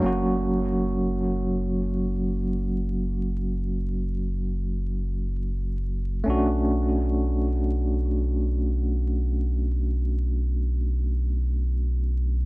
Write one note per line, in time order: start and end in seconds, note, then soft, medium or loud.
0.00 6.23 F#1 medium
0.00 6.20 F#3 medium
0.00 6.22 A#3 medium
0.00 6.22 C#4 medium
0.06 6.24 F#4 medium
6.24 12.45 B1 medium
6.24 12.44 A3 medium
6.24 12.45 C#4 medium
6.24 12.45 D4 medium
6.30 12.45 F#4 medium